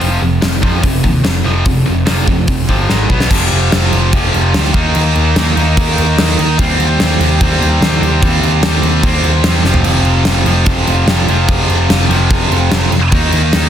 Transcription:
0.00 F1 F2 C3 F3, open hi-hat
0.21 F1 F2 C3
0.41 F1 F2 C3, snare, open hi-hat
0.62 F2 C3 F3, kick
0.83 F1 F2 C3, kick, open hi-hat
1.04 D#2 F2 C3, kick
1.24 F1 F2 C3, snare, open hi-hat
1.44 F1 F2 C3 F3
1.65 F1 F2 C3, kick, open hi-hat
1.86 F1 F2 C3
2.06 F1 F2 C3 F3, snare, open hi-hat
2.27 F2 C3, kick
2.48 F1 F2 C3, kick, open hi-hat
2.69 G1 F2 C3 F3, kick
2.89 G#1 G#2 D#3 G#3, snare
3.10 B1 B2 F#3 B3, kick
3.20 snare
3.30 F1 F2 C3 F3, kick, crash
3.51 F1, crash
3.72 F1, snare, crash
3.93 F1, crash
4.13 F2 C3 F3, kick, crash
4.34 F1, crash
4.54 D2, snare, crash
4.65 snare
4.74 D#2 D#3 A#3 D#4, kick, crash
4.95 D#2, crash
5.15 D#2, crash
5.36 D#2, snare, crash
5.55 D#2 D#3 A#3 D#4, crash
5.77 D#2, kick, crash
5.98 D#2, crash
6.17 D#2, snare, crash
6.29 snare
6.39 D#2, crash
6.58 D#2 C3 G3 C4, kick, crash
6.79 D#2, crash
6.99 D#2, snare, crash
7.19 D#2, crash
7.40 D#2 C3 G3 C4, kick, crash
7.60 D#2, crash
7.81 D#2, snare, crash
8.01 D#2, crash
8.22 D#2 C3 G3 C4, kick, crash
8.42 D#2, crash
8.63 D#2, snare, crash
8.83 D#2, crash
9.03 D#2 C3 G3 C4, kick, crash
9.23 D#2, crash
9.44 E2, snare, crash
9.63 F1 F2 C3 F3, snare
9.74 floor tom
9.84 F1, crash
10.05 F1, crash
10.25 F1, snare, crash
10.46 F1 F2 C3 F3, crash
10.66 F1, kick, crash
10.87 F1, crash
11.07 F1, snare, crash
11.28 F1 F2 C3 F3, crash
11.48 kick, crash
11.68 F1, crash
11.89 F1, snare, crash
12.09 F1 F2 C3 F3, crash
12.30 kick, crash
12.50 F1, crash
12.71 F1, snare, crash
12.91 F1, crash
13.12 D#2 D#3 A#3 D#4, kick, crash
13.32 D#2, crash
13.53 D#2, snare, crash

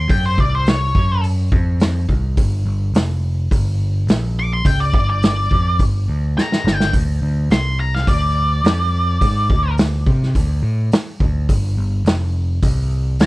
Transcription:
Already playing: C6
0.09 F#2 G5, kick, open hi-hat
0.26 C5
0.38 C2 D5, kick
0.55 C5
0.66 C#5, snare, open hi-hat
0.95 F#2, kick
1.24 open hi-hat
1.52 F2, kick
1.80 snare, open hi-hat
2.09 C2, kick
2.37 G1, kick, open hi-hat
2.66 G1
2.94 F1, snare, open hi-hat
3.51 G1, kick, open hi-hat
4.07 A#1, snare, open hi-hat
4.39 D6
4.53 C6
4.65 C#2 G5, kick, open hi-hat
4.80 D5
4.93 G1 D5, kick
5.10 D5
5.22 D5, snare, open hi-hat
5.51 F2, kick
5.79 G1, kick, open hi-hat
6.08 D2
6.36 A#5, muted picked electric bass stroke, snare
6.52 snare
6.64 G1, snare
6.76 G5
6.80 snare
6.93 D2, kick, open hi-hat
7.22 D2
7.50 C2 C6, snare, open hi-hat
7.80 A#5
7.95 F5, snare
8.07 D2 D5, kick, open hi-hat
8.64 F2, snare, open hi-hat
9.21 G#2, kick, open hi-hat
9.49 D2, kick
9.78 snare, open hi-hat
10.06 C3, kick
10.22 snare
10.35 D2, kick, open hi-hat
10.63 A2
10.92 muted picked electric bass stroke, snare, open hi-hat
11.20 D2, kick
11.49 G1, kick, open hi-hat
11.77 G1
12.05 F1, snare, open hi-hat
12.63 C2, kick, open hi-hat
13.19 D#2 A#5, snare, open hi-hat

